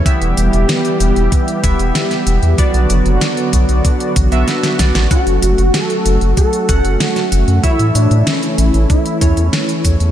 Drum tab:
HH |xxxxxxxxxxxxxxxx|xxxxxxxxxxxxxxxx|xxxxxxxxxxxxxxxx|xxxxxxxxxxxxxxxx|
SD |----o-------oo--|----o-------oooo|----o-------oo--|----o-------o---|
BD |o-------o-o-----|o-----o-o-o---o-|o-------o-o-----|o-------o-o---o-|